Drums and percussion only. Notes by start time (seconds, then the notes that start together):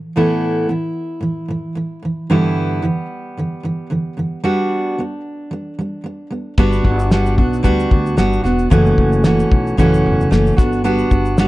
6.58 kick, crash
6.72 shaker
6.85 kick
6.99 shaker
7.11 snare, shaker
7.26 shaker
7.38 kick
7.53 shaker
7.64 kick, shaker
7.80 shaker
7.91 kick
8.06 shaker
8.18 snare, shaker
8.33 shaker
8.45 snare, shaker
8.59 shaker
8.71 kick, shaker
8.86 shaker
8.98 kick
9.12 shaker
9.24 snare, shaker
9.40 shaker
9.52 kick
9.67 shaker
9.78 kick, shaker
9.94 shaker
10.21 shaker
10.32 snare, shaker
10.47 shaker
10.58 kick, snare, shaker
10.73 shaker
10.84 shaker
10.98 shaker
11.11 kick, shaker
11.25 shaker
11.38 snare, shaker